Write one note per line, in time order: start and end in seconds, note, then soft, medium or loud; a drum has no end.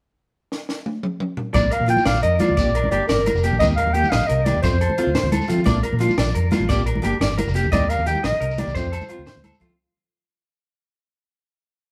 0.52 snare soft
0.69 snare medium
0.86 high tom medium
1.03 mid tom medium
1.20 mid tom medium
1.37 floor tom medium
1.54 1.69 A#1 medium
1.54 1.64 F3 medium
1.54 1.65 A#3 medium
1.54 1.65 D4 medium
1.54 1.65 D5 medium
1.54 1.74 D5 medium
1.54 kick medium
1.54 closed hi-hat medium
1.54 high conga medium
1.54 low agogo medium
1.54 shekere loud
1.71 1.82 A#4 medium
1.71 1.89 F5 medium
1.71 closed hi-hat soft
1.71 low agogo medium
1.80 1.95 A#2 medium
1.80 low conga medium
1.86 1.98 F3 medium
1.86 1.99 A#3 medium
1.86 1.99 F4 medium
1.86 2.05 G5 medium
1.86 muted steel-string acoustic guitar stroke medium
1.86 closed hi-hat soft
1.97 high conga medium
1.97 low conga soft
1.97 shekere soft
2.05 2.21 A#1 medium
2.05 2.17 D5 medium
2.05 2.22 F5 medium
2.05 snare medium
2.05 closed hi-hat medium
2.05 low agogo medium
2.05 shekere loud
2.14 low conga medium
2.14 shekere soft
2.23 2.38 F2 medium
2.23 2.34 A#4 medium
2.23 2.42 D#5 medium
2.23 closed hi-hat soft
2.39 2.50 F3 medium
2.39 2.51 A#3 medium
2.39 2.51 D4 medium
2.39 2.51 F4 medium
2.39 2.90 D5 medium
2.39 closed hi-hat soft
2.39 high conga medium
2.39 low conga soft
2.39 low agogo medium
2.39 shekere soft
2.49 2.57 D2 medium
2.49 low conga medium
2.57 2.66 G1 medium
2.57 2.68 A#3 medium
2.57 2.68 D4 medium
2.57 2.69 G4 medium
2.57 2.68 D5 medium
2.57 kick medium
2.57 closed hi-hat medium
2.57 low conga soft
2.57 shekere loud
2.66 2.88 A#1 medium
2.75 2.86 A#4 medium
2.75 closed hi-hat soft
2.75 low agogo medium
2.84 high conga medium
2.84 low conga medium
2.91 2.99 G1 medium
2.91 3.02 A#3 medium
2.91 3.03 D4 medium
2.91 3.03 G4 medium
2.91 3.07 D5 medium
2.91 closed hi-hat soft
2.91 low conga soft
2.91 low agogo medium
3.07 3.31 G1 medium
3.07 3.44 A#4 medium
3.07 3.20 D5 medium
3.07 snare medium
3.07 closed hi-hat medium
3.07 shekere loud
3.19 low conga medium
3.26 3.37 A#4 medium
3.26 closed hi-hat soft
3.26 high conga medium
3.26 low agogo medium
3.26 shekere soft
3.35 3.49 F1 medium
3.35 shekere soft
3.43 3.54 A#3 medium
3.43 3.54 D4 medium
3.43 3.55 G4 medium
3.43 closed hi-hat soft
3.43 shekere soft
3.52 3.59 A#1 medium
3.52 low conga medium
3.59 3.82 D#2 medium
3.59 3.71 D#3 medium
3.59 3.71 A#3 medium
3.59 3.72 D#4 medium
3.59 3.72 G4 medium
3.59 3.67 D#5 medium
3.59 3.71 D#5 medium
3.59 kick medium
3.59 closed hi-hat medium
3.59 high conga medium
3.59 low agogo medium
3.59 shekere loud
3.76 3.89 A#4 medium
3.76 3.95 F5 medium
3.76 closed hi-hat soft
3.76 low agogo medium
3.86 4.01 D#2 medium
3.86 low conga medium
3.94 4.05 D#3 medium
3.94 4.05 A#3 medium
3.94 4.05 D#4 medium
3.94 4.06 G4 medium
3.94 4.12 G5 medium
3.94 closed hi-hat soft
4.04 high conga medium
4.04 low conga soft
4.04 shekere soft
4.10 4.19 A#1 medium
4.10 4.23 D#5 medium
4.10 4.29 F5 medium
4.10 snare medium
4.10 closed hi-hat medium
4.10 low agogo medium
4.10 shekere loud
4.21 low conga medium
4.21 shekere soft
4.27 4.51 C2 medium
4.27 4.40 A#4 medium
4.27 4.46 D#5 medium
4.27 closed hi-hat soft
4.45 4.56 D#3 medium
4.45 4.57 A#3 medium
4.45 4.57 D#4 medium
4.45 4.58 G4 medium
4.45 4.62 D5 medium
4.45 closed hi-hat soft
4.45 high conga medium
4.45 low conga soft
4.45 low agogo medium
4.45 shekere soft
4.54 4.63 D#2 medium
4.54 low conga medium
4.62 4.71 F2 medium
4.62 4.73 A3 medium
4.62 4.74 C4 medium
4.62 4.74 F4 medium
4.62 5.45 C5 medium
4.62 4.75 C5 medium
4.62 kick medium
4.62 closed hi-hat medium
4.62 low conga soft
4.62 shekere loud
4.72 4.87 F2 medium
4.81 4.92 A4 medium
4.81 closed hi-hat soft
4.81 low agogo medium
4.90 high conga medium
4.90 low conga medium
4.98 5.08 A3 medium
4.98 5.09 C4 medium
4.98 5.09 F4 medium
4.98 closed hi-hat soft
4.98 low conga soft
4.98 low agogo medium
5.07 5.14 D2 medium
5.15 5.26 C5 medium
5.15 snare medium
5.15 closed hi-hat medium
5.15 shekere medium
5.23 5.38 D2 medium
5.23 low conga medium
5.32 5.43 A4 medium
5.32 closed hi-hat soft
5.32 high conga medium
5.32 low agogo medium
5.32 shekere soft
5.41 shekere soft
5.48 5.64 F3 medium
5.48 5.59 A3 medium
5.48 5.60 C4 medium
5.48 5.60 F4 medium
5.48 closed hi-hat medium
5.48 shekere soft
5.58 low conga medium
5.64 5.81 A#1 loud
5.64 5.76 F3 medium
5.64 5.76 A#3 medium
5.64 5.77 D4 medium
5.64 5.77 F4 medium
5.64 5.77 D5 medium
5.64 kick medium
5.64 closed hi-hat medium
5.64 high conga medium
5.64 low agogo medium
5.64 shekere medium
5.83 5.94 A#4 medium
5.83 closed hi-hat soft
5.83 low agogo medium
5.93 6.07 A#2 medium
5.93 low conga medium
5.99 6.10 F3 medium
5.99 6.11 A#3 medium
5.99 6.11 D4 medium
5.99 6.11 F4 medium
5.99 closed hi-hat medium
6.09 high conga medium
6.09 low conga soft
6.09 shekere soft
6.18 6.32 A#1 loud
6.18 6.29 D5 medium
6.18 snare medium
6.18 closed hi-hat medium
6.18 low agogo medium
6.18 shekere medium
6.26 low conga medium
6.26 shekere soft
6.35 6.50 F2 loud
6.35 6.46 A#4 medium
6.35 closed hi-hat soft
6.51 6.62 F3 medium
6.51 6.62 A#3 medium
6.51 6.63 D4 medium
6.51 6.63 F4 medium
6.51 snare soft
6.51 closed hi-hat soft
6.51 high conga medium
6.51 low conga soft
6.51 low agogo medium
6.51 shekere soft
6.60 6.68 A1 medium
6.60 low conga medium
6.69 6.78 G1 medium
6.69 6.79 A#3 medium
6.69 6.80 D4 medium
6.69 6.80 G4 medium
6.69 6.80 D5 medium
6.69 kick medium
6.69 closed hi-hat medium
6.69 low conga soft
6.69 shekere medium
6.78 7.00 A#1 medium
6.86 6.97 A#4 medium
6.86 closed hi-hat soft
6.86 low agogo medium
6.95 high conga medium
6.95 low conga medium
7.02 7.11 G1 medium
7.02 7.13 A#3 medium
7.02 7.14 D4 medium
7.02 7.14 G4 medium
7.02 7.15 G4 medium
7.02 closed hi-hat soft
7.02 low conga soft
7.02 low agogo medium
7.20 7.42 G1 medium
7.20 7.32 D5 medium
7.20 snare medium
7.20 closed hi-hat medium
7.20 shekere medium
7.30 low conga medium
7.38 7.49 A#4 medium
7.38 closed hi-hat soft
7.38 high conga medium
7.38 low agogo medium
7.38 shekere soft
7.47 7.61 F1 medium
7.47 shekere soft
7.54 7.65 A#3 medium
7.54 7.65 D4 medium
7.54 7.66 G4 medium
7.54 closed hi-hat soft
7.54 shekere soft
7.64 7.71 D2 medium
7.64 low conga medium
7.72 7.94 D#2 medium
7.72 7.82 D#3 medium
7.72 7.83 A#3 medium
7.72 7.83 D#4 medium
7.72 7.83 G4 medium
7.72 7.91 D5 medium
7.72 7.83 D#5 medium
7.72 kick medium
7.72 closed hi-hat medium
7.72 high conga medium
7.72 low agogo medium
7.72 shekere medium
7.89 8.00 A#4 medium
7.89 8.07 F5 loud
7.89 closed hi-hat medium
7.89 low agogo medium
7.89 shekere soft
7.98 8.13 D#2 medium
7.98 low conga medium
8.06 8.17 D#3 medium
8.06 8.17 A#3 medium
8.06 8.18 D#4 medium
8.06 8.17 G4 medium
8.06 8.18 G4 medium
8.06 8.23 G5 medium
8.06 closed hi-hat medium
8.06 shekere soft
8.15 high conga medium
8.15 low conga soft
8.24 8.31 A#1 medium
8.24 8.35 D#5 medium
8.24 8.61 D#5 medium
8.24 snare medium
8.24 closed hi-hat medium
8.24 low agogo medium
8.24 shekere medium
8.32 low conga medium
8.40 8.63 C2 medium
8.40 8.52 A#4 medium
8.40 closed hi-hat soft
8.51 shekere soft
8.58 8.68 D#3 medium
8.58 8.69 A#3 medium
8.58 8.69 D#4 medium
8.58 8.70 G4 medium
8.58 8.78 D5 medium
8.58 snare soft
8.58 closed hi-hat soft
8.58 high conga medium
8.58 low conga soft
8.58 low agogo medium
8.67 8.74 C2 medium
8.67 low conga medium
8.67 shekere soft
8.75 8.83 F2 medium
8.75 8.86 A3 medium
8.75 8.87 C4 medium
8.75 8.87 F4 medium
8.75 8.86 C5 medium
8.75 9.62 C5 medium
8.75 kick medium
8.75 closed hi-hat medium
8.75 shekere medium
8.84 8.99 F2 medium
8.92 9.03 A4 medium
8.92 closed hi-hat soft
8.92 low agogo medium
8.92 shekere soft
9.01 high conga medium
9.01 low conga medium
9.01 shekere soft
9.09 9.21 C4 medium
9.09 9.20 F4 medium
9.09 9.21 F4 medium
9.09 muted steel-string acoustic guitar stroke medium
9.09 closed hi-hat soft
9.09 low agogo medium
9.19 9.26 D2 medium
9.26 9.38 C5 medium
9.26 snare medium
9.26 closed hi-hat medium
9.26 shekere medium
9.35 9.51 D2 medium
9.35 low conga medium
9.44 9.55 A4 medium
9.44 closed hi-hat soft
9.44 high conga medium
9.44 low agogo medium
9.44 shekere soft
9.53 shekere soft
9.60 9.76 F3 medium
9.60 9.71 A3 medium
9.60 9.72 C4 medium
9.60 9.72 F4 medium
9.60 kick medium
9.60 closed hi-hat soft
9.70 low conga medium